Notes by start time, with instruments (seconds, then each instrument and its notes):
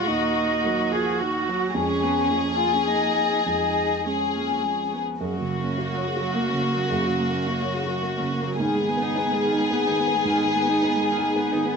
Already playing: grand piano D#2 A#2, violin section F#4
0.07 grand piano D#2, viola A#3, cello D#4
0.64 viola F#3, grand piano A#3
0.92 viola F3, cello G#4
1.19 viola D#3, cello F#4
1.49 viola F#3
1.74 grand piano F2, viola G#3, cello C#4, violin section G#4
2.03 viola B3
2.30 grand piano F3, viola A#3
2.59 cello F4
2.74 cello C#4
2.87 cello D#4
3.45 grand piano F2, viola G#3, cello D#4
4.05 grand piano G#3, viola G#3, cello C#4, violin section G#4
4.35 viola A#3
4.63 viola G#3
4.93 viola B3
5.20 grand piano F#2, viola C#3, cello A#3, violin section F#4
5.36 viola F#3
5.41 grand piano C#3
5.50 viola A#3
5.59 grand piano A#3
5.64 viola C#4
5.78 viola A#3, grand piano F#4
5.93 viola F#3
5.97 grand piano C#5
6.07 viola C#3
6.16 grand piano F#4
6.21 viola F#3
6.34 viola A#3, grand piano A#3
6.49 viola C#4
6.54 grand piano C#3
6.62 viola A#3
6.72 viola F#3, grand piano A#3
6.90 grand piano F#2, viola C#3
7.05 viola F#3
7.10 grand piano C#3
7.19 viola A#3
7.28 grand piano A#3
7.34 viola C#4
7.46 viola A#3, grand piano F#4
7.61 viola F#3, grand piano C#5
7.75 viola C#3
7.84 grand piano F#4
7.88 viola F#3
8.02 grand piano A#3, viola A#3
8.17 grand piano C#3, viola C#4
8.33 viola A#3
8.41 grand piano A#3
8.46 viola F#3
8.59 grand piano G#2, viola D#3, cello B3, violin section G#4
8.74 viola G#3
8.78 grand piano D#3
8.89 viola B3
8.97 grand piano B3
9.02 viola D#4
9.15 viola B3, grand piano D#4
9.32 viola G#3, grand piano G#4
9.45 viola D#3
9.53 grand piano D#4
9.58 viola G#3
9.71 grand piano B3, viola B3
9.86 grand piano D#3, viola D#4
9.99 viola B3
10.07 grand piano B3
10.14 viola G#3
10.25 grand piano G#2, viola D#3
10.42 grand piano D#3, viola G#3
10.56 viola B3
10.62 grand piano B3
10.69 viola D#4
10.82 viola B3, grand piano D#4
10.96 viola G#3
11.01 grand piano G#4
11.11 viola D#3
11.18 grand piano D#4
11.24 viola G#3
11.36 grand piano B3, viola B3
11.52 grand piano D#3, viola D#4
11.65 viola B3